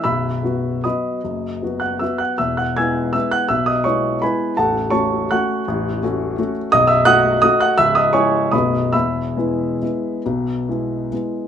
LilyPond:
<<
  \new Staff \with { instrumentName = "Grand piano" } { \time 3/4 \key e \major \tempo 4 = 159 <e'' b'' e'''>2 <dis'' b'' dis'''>4~ | <dis'' b'' dis'''>4. <fis'' fis'''>8 <e'' e'''>8 <fis'' fis'''>8 | <e'' e'''>8 <fis'' fis'''>8 <gis'' e''' gis'''>4 <e'' e'''>8 <fis'' fis'''>8 | <e'' e'''>8 <dis'' dis'''>8 <cis'' cis'''>4 <b' gis'' b''>4 |
<a' fis'' a''>4 <cis'' a'' cis'''>4 <fis'' cis''' fis'''>4~ | <fis'' cis''' fis'''>2~ <fis'' cis''' fis'''>8 r8 | <dis'' dis'''>8 <e'' e'''>8 <fis'' dis''' fis'''>4 <dis'' dis'''>8 <fis'' fis'''>8 | <e'' e'''>8 <dis'' dis'''>8 <cis'' gis'' cis'''>4 <dis'' b'' dis'''>4 |
<e'' b'' e'''>2.~ | <e'' b'' e'''>2 r4 | }
  \new Staff \with { instrumentName = "Grand piano" } { \time 3/4 \key e \major <b,,, b,,>4 <fis b fis'>4 <fis b fis'>4 | <fis,, fis,>4 <fis b fis'>4 <fis b fis'>4 | <e,, e,>4 <gis b e'>4 <gis b e'>4 | <b,, b,>4 <gis b e'>4 <gis b e'>4 |
<a,,, a,,>4 <a cis' fis'>4 <a cis' fis'>4 | <a,,, a,,>4 <a cis' fis'>4 <a cis' fis'>4 | <b,,, b,,>4 <a dis' fis'>4 <a dis' fis'>4 | <cis,, cis,>4 <gis e'>4 <b,,, b,, a b fis'>4 |
<e,, e,>4 <gis b e'>4 <gis b e'>4 | <b,, b,>4 <gis b e'>4 <gis b e'>4 | }
>>